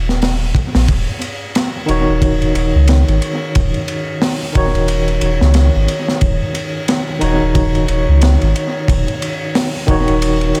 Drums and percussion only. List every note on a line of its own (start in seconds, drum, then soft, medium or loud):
0.09 snare soft
0.22 snare medium
0.22 open hi-hat medium
0.55 kick medium
0.55 ride medium
0.75 snare medium
0.75 open hi-hat medium
0.88 kick medium
0.88 ride medium
1.22 ride medium
1.55 snare loud
1.55 ride medium
1.88 ride medium
2.22 kick loud
2.22 ride medium
2.42 ride soft
2.55 ride medium
2.88 snare loud
2.88 ride medium
3.08 ride soft
3.22 ride medium
3.55 kick medium
3.55 ride medium
3.74 ride soft
3.88 ride medium
4.22 snare loud
4.22 open hi-hat medium
4.55 kick medium
4.55 ride medium
4.75 ride soft
4.88 ride medium
5.08 ride soft
5.21 ride medium
5.41 snare soft
5.54 snare medium
5.54 ride medium
5.88 ride medium
6.08 snare soft
6.21 kick loud
6.21 ride medium
6.55 ride medium
6.88 snare loud
6.88 ride medium
7.21 ride medium
7.55 kick medium
7.55 ride medium
7.75 ride soft
7.88 ride medium
8.21 snare loud
8.21 ride medium
8.41 ride soft
8.56 ride medium
8.88 kick medium
8.88 ride medium
9.08 ride soft
9.22 ride medium
9.55 snare loud
9.55 open hi-hat medium
9.88 kick medium
9.88 ride medium
10.08 ride soft
10.22 ride medium
10.41 ride soft
10.55 ride medium